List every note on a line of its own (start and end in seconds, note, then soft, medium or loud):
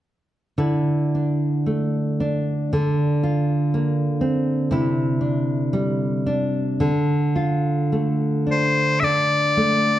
0.58 2.73 D3 soft
0.58 2.83 E4 soft
1.15 2.20 D4 soft
1.66 2.82 A3 soft
2.20 4.21 D4 soft
2.73 6.23 D3 medium
3.23 4.72 F4 soft
3.74 4.82 A#3 soft
4.21 5.20 C4 soft
4.71 6.90 C3 medium
4.71 6.91 E4 medium
5.21 6.26 D4 soft
5.73 6.90 G3 medium
6.26 8.46 D4 soft
6.80 9.02 D3 medium
7.36 9.99 F4 soft
7.92 9.57 A3 soft
8.47 9.99 D4 soft
8.51 9.00 C5 medium
9.00 9.99 D3 medium
9.00 9.04 E5 medium
9.04 9.99 D5 medium
9.57 9.99 A3 soft